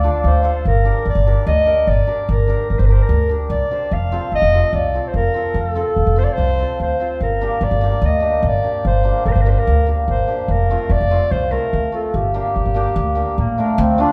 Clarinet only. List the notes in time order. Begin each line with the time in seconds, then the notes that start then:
Already playing: D5
0.27 C5
0.67 A#4
1.09 D5
1.47 D#5
1.88 D5
2.31 A#4
2.70 A#4
2.79 C5
2.86 A#4
2.93 C5
3.02 A#4
3.51 D5
3.93 F5
4.35 D#5
4.74 D5
5.08 C5
5.16 A#4
5.59 A4
6.18 C5
6.24 D5
6.33 C5
6.82 C5
7.23 A#4
7.64 D5
8.06 D#5
8.47 D5
8.87 C5
9.25 A#4
9.32 C5
9.42 A#4
9.49 C5
9.59 A#4
10.10 C5
10.51 A#4
10.92 D5
11.31 C5
11.52 A#4
11.93 A4
12.15 G4
13.39 A#3
13.59 A3
14.00 D4